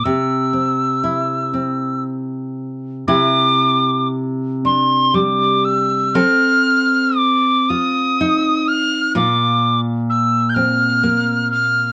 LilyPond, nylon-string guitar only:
\new Staff \with { instrumentName = "Nylon-string guitar" } { \time 6/8 \key c \mixolydian \tempo 4. = 40 c8 c'8 e'8 c'4. | <c e'>4. d'8 g4 | <c' a'>4. f'8 ees'4 | <bes, f'>4. c'8 bes4 | }